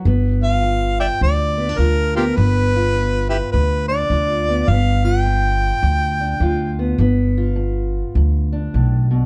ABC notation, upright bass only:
X:1
M:4/4
L:1/8
Q:"Swing" 1/4=104
K:Gmix
V:1 name="Upright bass" clef=bass
G,,,4 D,,2 D,,2 | G,,,4 D,,2 D,,2 | G,,,4 D,,2 D,,2 | G,,,4 D,,2 B,,,2 |]